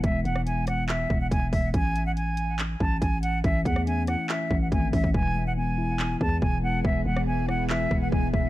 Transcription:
<<
  \new Staff \with { instrumentName = "Flute" } { \time 4/4 \key e \major \tempo 4 = 141 e''8 fis''8 gis''8 fis''8 e''8. fis''16 gis''8 e''8 | gis''8. fis''16 gis''4. a''8 gis''8 fis''8 | e''8 fis''8 gis''8 fis''8 e''8. fis''16 gis''8 e''8 | gis''8. fis''16 gis''4. a''8 gis''8 fis''8 |
e''8 fis''8 gis''8 fis''8 e''8. fis''16 gis''8 e''8 | }
  \new Staff \with { instrumentName = "Ambient pad" } { \time 4/4 \key e \major r1 | r1 | r1 | <e b gis'>1~ |
<e b gis'>1 | }
  \new Staff \with { instrumentName = "Tine electric piano" } { \time 4/4 \key e \major r1 | r1 | e8 a8 cis'8 e'4 e8 a8 cis'8 | e8 gis8 b8 e'4 e8 gis8 b8 |
e8 gis8 b8 e'4 e8 gis8 b8 | }
  \new Staff \with { instrumentName = "808-style bass" } { \clef bass \time 4/4 \key e \major e,,8 e,,2 e,,8 e,,8 e,,8 | a,,2~ a,,8 a,,8 a,,4 | a,,8 e,4~ e,16 r8. a,,8 gis,,8 a,,8 | e,,2~ e,,8 e,8 e,,4 |
e,,8 e,,2 e,,8 e,,8 e,,8 | }
  \new DrumStaff \with { instrumentName = "Drums" } \drummode { \time 4/4 <hh bd>8 hh16 ss16 hh8 <hh ss>8 <hc hh>8 bd8 <hh bd>8 <hho bd>8 | <hh bd>8 hh8 hh8 hh8 <hc hh>8 bd8 <hh bd>8 hh8 | <hh bd>8 <hh bd>16 ss16 hh8 <hh ss>8 <hc hh>8 bd8 <hh bd>8 <hho bd>16 bd16 | bd4 r4 hc8 bd8 bd4 |
bd8. ss16 r8 ss8 hc8 bd8 bd8 bd8 | }
>>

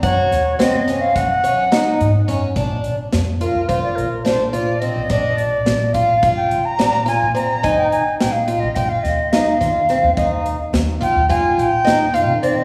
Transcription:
<<
  \new Staff \with { instrumentName = "Flute" } { \time 9/8 \key bes \mixolydian \tempo 4. = 71 des''4 ees''8. f''16 ges''4. r4 | r4. bes'8 c''16 d''16 bes'8 c''8 d''8 ees''8~ | ees''8 d''4 f''8. g''8 bes''8. aes''8 bes''8 | aes''16 g''16 aes''8 g''16 f''8 ees''16 g''16 f''16 ees''8 f''4.~ |
f''4 r8 g''8 aes''8 g''4 f''8 d''16 ees''16 | }
  \new Staff \with { instrumentName = "Twelve-string acoustic guitar" } { \time 9/8 \key bes \mixolydian ges'4 c'8 des'4 des'8 ees'4 des'8 | d'4 r8 f'8 f'4 d'8 f'8 c'8 | d'4 r8 f'8 f'4 d'8 f'8 c'8 | ees'4 r8 f'8 f'4 ees'8 f'8 c'8 |
ees'4 r8 f'8 f'4 ees'8 f'8 c'8 | }
  \new Staff \with { instrumentName = "Upright bass" } { \clef bass \time 9/8 \key bes \mixolydian ges,16 r16 ees,8 r16 ges,8 r16 ges8 r4 aes,8 ges,16 r16 | bes,,8 r8 f,8. f,8 r16 bes,,4 bes,8 r16 bes,,16 | bes,,4 bes,,8 r16 bes,,8. f,16 r16 bes,,8. bes,8 r16 | ees,8 r8 bes,,8. bes,,8 r16 ees,4 ees8 r16 ees,16 |
ees,4 ees,8 r16 ees,8. bes,,16 r16 ees,8. ees8 r16 | }
  \new DrumStaff \with { instrumentName = "Drums" } \drummode { \time 9/8 <hh bd>8 <hh sn>8 <hh sn>8 <hh sn>8 <hh bd sn>8 hh8 <hh sn>8 hh8 <hh sn>8 | <hh bd>8 hh8 <hh sn>8 hh8 <hh bd>8 hh8 <hh sn>8 hh8 hh8 | <hh bd>8 hh8 <hh sn>8 <hh bd>8 <hh bd>8 hh8 <hh sn>8 <hh sn>8 hh8 | <hh bd>8 hh8 <hh sn>8 hh8 <hh bd>8 <hh sn>8 <hh sn>8 <hh sn>8 <hh sn>8 |
<hh bd>8 hh8 <hh sn>8 <hh bd>8 <hh bd>8 hh8 <hh sn>8 hh8 hh8 | }
>>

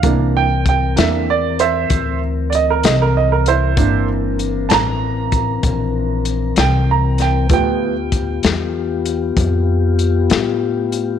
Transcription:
<<
  \new Staff \with { instrumentName = "Upright piano" } { \time 12/8 \key c \mixolydian \tempo 4. = 64 r8 g''8 g''8 e''8 d''8 <c'' e''>4 r8 <d'' ees''>16 bes'16 ees''16 bes'16 ees''16 bes'16 <e' c''>8~ | <e' c''>8 r4 <a'' bes''>2. g''8 bes''8 g''8 | g''2. r2. | }
  \new Staff \with { instrumentName = "Upright piano" } { \time 12/8 \key c \mixolydian <e bes d'>8 r4 <e bes d'>8 r1 | <e bes d'>1. | <f a b>8 r1 r4. | }
  \new Staff \with { instrumentName = "Tonewheel organ" } { \time 12/8 \key c \mixolydian <e c' bes'>1. | <e c' bes'>1. | <b f' g'>1. | }
  \new Staff \with { instrumentName = "Upright bass" } { \clef bass \time 12/8 \key c \mixolydian c,4. e,4. d,4. c,4. | g,,4. a,,4. bes,,4. c,4. | d,4. e,4. f,4. a,4. | }
  \new DrumStaff \with { instrumentName = "Drums" } \drummode { \time 12/8 <hh bd>4 <hh bd>8 <hh sn>4 hh8 <hh bd>4 hh8 <hh sn>4 hh8 | <hh bd>4 hh8 <hh sn>4 <hh bd>8 <hh bd>4 hh8 <hh sn>4 <hh sn>8 | <hh bd>4 <hh bd>8 <hh sn>4 hh8 <hh bd>4 hh8 <hh sn>4 hh8 | }
>>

